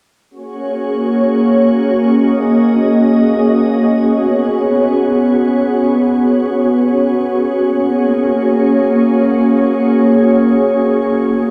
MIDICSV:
0, 0, Header, 1, 2, 480
1, 0, Start_track
1, 0, Key_signature, 6, "major"
1, 0, Tempo, 500000
1, 11046, End_track
2, 0, Start_track
2, 0, Title_t, "Ambient pad"
2, 0, Program_c, 0, 92
2, 294, Note_on_c, 0, 58, 82
2, 294, Note_on_c, 0, 61, 75
2, 294, Note_on_c, 0, 66, 75
2, 294, Note_on_c, 0, 68, 73
2, 294, Note_on_c, 0, 73, 91
2, 2034, Note_off_c, 0, 73, 0
2, 2052, Note_on_c, 0, 75, 89
2, 3775, Note_off_c, 0, 58, 0
2, 3793, Note_off_c, 0, 75, 0
2, 3808, Note_on_c, 0, 59, 83
2, 3808, Note_on_c, 0, 73, 88
2, 7290, Note_off_c, 0, 61, 0
2, 7290, Note_off_c, 0, 68, 0
2, 7291, Note_off_c, 0, 59, 0
2, 7327, Note_on_c, 0, 58, 83
2, 7327, Note_on_c, 0, 61, 73
2, 7328, Note_on_c, 0, 68, 75
2, 10808, Note_off_c, 0, 66, 0
2, 10810, Note_off_c, 0, 58, 0
2, 10845, Note_on_c, 0, 59, 84
2, 10845, Note_on_c, 0, 66, 73
2, 11046, Note_off_c, 0, 59, 0
2, 11046, Note_off_c, 0, 61, 0
2, 11046, Note_off_c, 0, 66, 0
2, 11046, Note_off_c, 0, 68, 0
2, 11046, Note_off_c, 0, 73, 0
2, 11046, End_track
0, 0, End_of_file